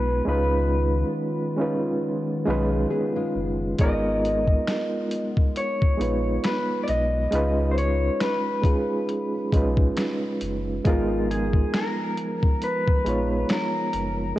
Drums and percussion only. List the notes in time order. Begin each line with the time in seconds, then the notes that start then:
3.79 kick, closed hi-hat
4.25 closed hi-hat
4.48 kick
4.68 finger snap, snare, closed hi-hat
5.11 closed hi-hat
5.37 kick
5.56 closed hi-hat
5.82 kick
6.01 closed hi-hat
6.44 finger snap, snare, closed hi-hat
6.88 closed hi-hat
7.32 closed hi-hat
7.78 closed hi-hat
8.21 finger snap, snare, closed hi-hat
8.64 kick, closed hi-hat
9.09 closed hi-hat
9.53 kick, closed hi-hat
9.77 kick
9.97 finger snap, snare, closed hi-hat
10.41 closed hi-hat
10.85 kick, closed hi-hat
11.31 closed hi-hat
11.53 kick
11.74 finger snap, snare, closed hi-hat
12.17 closed hi-hat
12.43 kick
12.62 closed hi-hat
12.87 kick
13.06 closed hi-hat
13.49 finger snap, snare, closed hi-hat
13.93 closed hi-hat